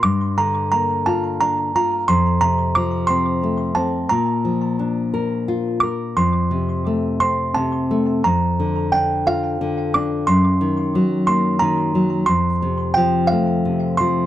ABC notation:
X:1
M:6/8
L:1/8
Q:3/8=59
K:Fmix
V:1 name="Music box"
d' b b a b b | c' b d' c'2 a | b4- b d' | c'3 c' a2 |
b2 g f2 d' | c'3 c' b2 | c'2 g f2 c' |]
V:2 name="Nylon-string guitar" clef=bass
G,, D, B, F D F | F,, C, F, C A, C | B,, F, D B F B | F,, C, A, C C, A, |
F,, D, D F D, D | _G,, E, _G, B, E, G, | F,, C, F, A, C, F, |]